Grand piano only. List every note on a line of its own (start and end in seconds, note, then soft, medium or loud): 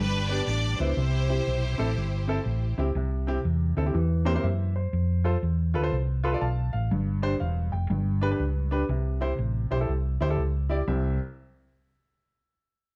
0.00 0.75 G2 medium
0.30 0.39 B3 medium
0.30 0.40 D4 medium
0.30 0.40 G4 medium
0.79 0.89 B3 medium
0.79 0.89 D4 medium
0.79 0.90 E4 medium
0.97 1.75 C3 medium
1.29 1.39 C4 medium
1.29 1.39 E4 medium
1.29 1.39 G4 medium
1.78 1.88 C4 medium
1.78 1.88 E4 medium
1.78 1.88 A4 loud
2.28 2.37 C4 medium
2.28 2.38 E4 medium
2.28 2.38 A4 loud
2.78 2.87 C4 medium
2.78 2.87 E4 medium
2.78 2.88 G4 loud
2.96 3.73 C3 medium
3.27 3.37 C4 medium
3.27 3.37 E4 medium
3.27 3.37 G4 loud
3.77 3.81 C4 medium
3.77 3.82 E4 medium
3.77 3.82 A4 medium
3.85 3.94 C4 medium
3.85 3.94 E4 medium
3.85 3.94 G4 medium
3.94 4.72 E3 medium
4.25 4.30 A#3 medium
4.25 4.31 C4 medium
4.25 4.31 E4 medium
4.25 4.31 G4 medium
4.25 4.31 C5 loud
4.34 4.45 A#3 medium
4.34 4.45 C4 medium
4.34 4.45 E4 medium
4.34 4.45 G4 medium
4.34 4.44 C5 loud
4.44 4.74 E5 medium
4.76 5.23 C5 medium
5.24 5.34 F4 medium
5.24 5.35 A4 medium
5.24 5.35 C5 medium
5.74 5.79 F4 medium
5.74 5.80 A4 medium
5.74 5.80 B4 medium
5.82 5.93 F4 medium
5.82 5.94 A4 medium
5.82 5.94 C5 medium
6.24 6.29 F4 medium
6.24 6.29 A4 medium
6.24 6.30 B4 medium
6.24 6.41 C6 medium
6.32 6.43 F4 medium
6.32 6.43 A4 medium
6.32 6.44 D5 medium
6.41 6.71 F5 medium
6.41 6.72 A5 medium
6.73 6.90 F5 medium
6.91 7.69 G2 medium
7.22 7.33 D4 medium
7.22 7.33 G4 medium
7.22 7.33 C5 loud
7.40 7.71 F5 medium
7.72 8.20 G5 medium
7.90 8.68 G2 medium
8.21 8.27 D4 medium
8.21 8.27 G4 medium
8.21 8.27 B4 loud
8.31 8.41 D4 medium
8.31 8.42 G4 medium
8.31 8.42 B4 medium
8.71 8.81 D4 medium
8.71 8.82 G4 medium
8.71 8.82 B4 medium
8.89 9.67 C3 medium
9.21 9.31 E4 medium
9.21 9.31 G4 medium
9.21 9.31 C5 loud
9.71 9.76 E4 medium
9.71 9.76 G4 medium
9.71 9.76 C5 loud
9.80 9.90 E4 medium
9.80 9.90 G4 medium
9.80 9.91 A4 medium
10.21 10.25 E4 medium
10.21 10.26 G4 medium
10.21 10.26 C5 loud
10.29 10.40 E4 medium
10.29 10.40 G4 medium
10.29 10.40 A4 medium
10.69 10.79 E4 medium
10.69 10.80 G4 medium
10.69 10.80 D5 medium
10.88 11.18 C2 medium
10.88 11.18 C4 medium
10.88 11.18 E4 medium
10.88 11.18 G4 medium
10.88 11.18 E5 medium